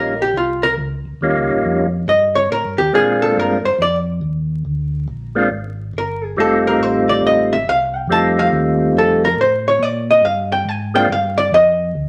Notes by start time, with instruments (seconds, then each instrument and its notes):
Already playing: tonewheel organ A#1 G3 A#3 C#4 D#4 F4, hollow-body jazz guitar A#4
0.22 hollow-body jazz guitar G4
0.33 tonewheel organ C2
0.37 hollow-body jazz guitar F4
0.63 hollow-body jazz guitar A#4
0.78 tonewheel organ C#2
1.05 tonewheel organ C#2
1.21 tonewheel organ D#2 G3 A#3 C#4 D#4 F4
1.36 tonewheel organ C#2
1.51 tonewheel organ A#1
1.64 tonewheel organ F2
2.07 tonewheel organ G2, hollow-body jazz guitar D#5
2.35 hollow-body jazz guitar C#5
2.50 tonewheel organ A2, hollow-body jazz guitar A#4
2.65 tonewheel organ G2
2.77 tonewheel organ D#2, hollow-body jazz guitar G4
2.93 tonewheel organ A#2 G#3 A#3 C4 D4 F4, hollow-body jazz guitar G#4
3.22 hollow-body jazz guitar A4
3.36 tonewheel organ G2, hollow-body jazz guitar A#4
3.64 tonewheel organ G2, hollow-body jazz guitar C5
3.78 tonewheel organ F2, hollow-body jazz guitar D5
4.21 tonewheel organ D#2
4.65 tonewheel organ D2
5.08 tonewheel organ A#1
5.35 tonewheel organ G#3 A#3 C4 D4 F4
5.50 tonewheel organ G#1
5.93 tonewheel organ G1
5.98 hollow-body jazz guitar A#4
6.24 hollow-body jazz guitar G#4
6.36 tonewheel organ F1 G3 A3 C4 D#4 F4, hollow-body jazz guitar A4
6.67 hollow-body jazz guitar A#4
6.79 tonewheel organ A1, hollow-body jazz guitar C5
7.09 hollow-body jazz guitar D5
7.22 tonewheel organ A1
7.27 hollow-body jazz guitar D#5
7.53 hollow-body jazz guitar E5
7.65 tonewheel organ C2, hollow-body jazz guitar F5
7.96 hollow-body jazz guitar G5
8.07 tonewheel organ F2 G3 A3 C4 D#4 F4
8.12 hollow-body jazz guitar A5
8.39 hollow-body jazz guitar F5
8.50 tonewheel organ D#2
8.93 tonewheel organ F2
8.98 hollow-body jazz guitar A4
9.25 hollow-body jazz guitar A#4
9.36 tonewheel organ A2
9.41 hollow-body jazz guitar C5
9.68 hollow-body jazz guitar C#5
9.79 tonewheel organ A#2, hollow-body jazz guitar D5
10.11 hollow-body jazz guitar D#5
10.21 tonewheel organ G2, hollow-body jazz guitar F5
10.52 hollow-body jazz guitar G5
10.65 tonewheel organ G#2, hollow-body jazz guitar G#5
10.94 tonewheel organ G#3 A#3 C4 D4 F4, hollow-body jazz guitar G5
11.09 tonewheel organ G2, hollow-body jazz guitar F5
11.38 hollow-body jazz guitar D5
11.52 tonewheel organ F2, hollow-body jazz guitar D#5
11.95 tonewheel organ D2